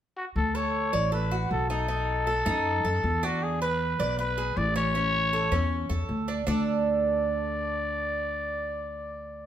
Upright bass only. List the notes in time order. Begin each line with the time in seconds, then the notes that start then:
0.36 D2
0.93 A1
1.51 B1
2.46 F#2
2.84 F#2
3.04 E2
3.99 B1
4.57 A1
5.52 E2
5.90 E2
6.09 D2
6.47 D2